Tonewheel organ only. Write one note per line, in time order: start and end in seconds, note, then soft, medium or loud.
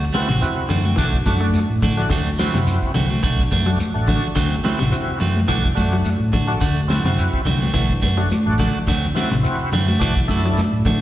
0.15 0.29 C4 medium
0.15 0.29 E4 medium
0.15 0.29 F#4 medium
0.41 0.68 C4 medium
0.41 0.68 E4 medium
0.41 0.69 F#4 loud
0.97 1.12 A3 medium
0.97 1.12 D4 medium
0.97 1.13 F#4 medium
1.26 1.60 A3 medium
1.26 1.59 D4 medium
1.26 1.60 F#4 medium
1.97 2.10 A3 medium
1.97 2.10 D4 medium
1.97 2.10 F#4 medium
2.39 2.92 C4 medium
2.39 2.92 E4 medium
2.39 2.92 F#4 loud
3.67 3.79 A3 medium
3.67 3.79 D4 medium
3.67 3.79 F#4 medium
3.94 4.27 A3 medium
3.94 4.27 D4 medium
3.94 4.28 F#4 medium
4.64 4.79 C4 medium
4.64 4.79 E4 medium
4.64 4.79 F#4 medium
4.92 5.19 C4 medium
4.92 5.19 E4 medium
4.92 5.19 F#4 loud
5.48 5.64 A3 medium
5.48 5.63 D4 medium
5.48 5.63 F#4 medium
5.75 6.10 A3 medium
5.75 6.09 D4 medium
5.75 6.09 F#4 medium
6.47 6.61 A3 medium
6.47 6.61 D4 medium
6.47 6.61 F#4 medium
6.88 7.42 C4 medium
6.88 7.42 E4 medium
6.88 7.42 F#4 medium
8.17 8.29 A3 medium
8.17 8.30 D4 medium
8.17 8.30 F#4 medium
8.46 8.79 A3 medium
8.46 8.79 D4 medium
8.46 8.79 F#4 medium
9.14 9.30 C4 medium
9.14 9.30 E4 medium
9.14 9.30 F#4 medium
9.43 9.70 C4 medium
9.43 9.70 E4 medium
9.43 9.71 F#4 medium
9.99 10.14 A3 medium
9.99 10.14 D4 medium
9.99 10.14 F#4 medium
10.28 10.61 A3 medium
10.28 10.61 D4 medium
10.28 10.62 E4 medium